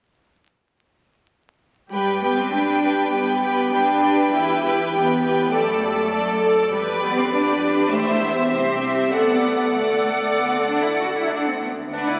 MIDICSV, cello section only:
0, 0, Header, 1, 2, 480
1, 0, Start_track
1, 0, Key_signature, 1, "major"
1, 0, Tempo, 601805
1, 1531, Time_signature, 4, 2, 24, 8
1, 6797, Tempo, 619195
1, 9645, End_track
2, 0, Start_track
2, 0, Title_t, "Cello section"
2, 0, Program_c, 0, 48
2, 1538, Note_on_c, 0, 55, 58
2, 1760, Note_off_c, 0, 55, 0
2, 1778, Note_on_c, 0, 59, 55
2, 1897, Note_off_c, 0, 59, 0
2, 1908, Note_on_c, 0, 60, 52
2, 2021, Note_on_c, 0, 62, 55
2, 2022, Note_off_c, 0, 60, 0
2, 2499, Note_off_c, 0, 62, 0
2, 2500, Note_on_c, 0, 59, 53
2, 2967, Note_off_c, 0, 59, 0
2, 2980, Note_on_c, 0, 62, 61
2, 3457, Note_off_c, 0, 62, 0
2, 3459, Note_on_c, 0, 64, 63
2, 3925, Note_off_c, 0, 64, 0
2, 3938, Note_on_c, 0, 59, 53
2, 4404, Note_off_c, 0, 59, 0
2, 4415, Note_on_c, 0, 57, 55
2, 5129, Note_off_c, 0, 57, 0
2, 5362, Note_on_c, 0, 55, 57
2, 5426, Note_off_c, 0, 55, 0
2, 5599, Note_on_c, 0, 59, 71
2, 5716, Note_off_c, 0, 59, 0
2, 5723, Note_on_c, 0, 60, 64
2, 5831, Note_on_c, 0, 62, 60
2, 5839, Note_off_c, 0, 60, 0
2, 6301, Note_off_c, 0, 62, 0
2, 6306, Note_on_c, 0, 57, 68
2, 6543, Note_on_c, 0, 59, 59
2, 6551, Note_off_c, 0, 57, 0
2, 6791, Note_off_c, 0, 59, 0
2, 6796, Note_on_c, 0, 60, 68
2, 7264, Note_off_c, 0, 60, 0
2, 7272, Note_on_c, 0, 59, 67
2, 7754, Note_on_c, 0, 57, 49
2, 7755, Note_off_c, 0, 59, 0
2, 8236, Note_on_c, 0, 59, 55
2, 8238, Note_off_c, 0, 57, 0
2, 8356, Note_off_c, 0, 59, 0
2, 8361, Note_on_c, 0, 60, 56
2, 8480, Note_off_c, 0, 60, 0
2, 8484, Note_on_c, 0, 62, 59
2, 8600, Note_off_c, 0, 62, 0
2, 8604, Note_on_c, 0, 64, 49
2, 8722, Note_off_c, 0, 64, 0
2, 8724, Note_on_c, 0, 66, 61
2, 8771, Note_off_c, 0, 66, 0
2, 8851, Note_on_c, 0, 64, 53
2, 8964, Note_off_c, 0, 64, 0
2, 8966, Note_on_c, 0, 62, 62
2, 9084, Note_off_c, 0, 62, 0
2, 9087, Note_on_c, 0, 60, 46
2, 9134, Note_off_c, 0, 60, 0
2, 9199, Note_on_c, 0, 59, 53
2, 9261, Note_off_c, 0, 59, 0
2, 9437, Note_on_c, 0, 62, 55
2, 9555, Note_off_c, 0, 62, 0
2, 9556, Note_on_c, 0, 64, 57
2, 9645, Note_off_c, 0, 64, 0
2, 9645, End_track
0, 0, End_of_file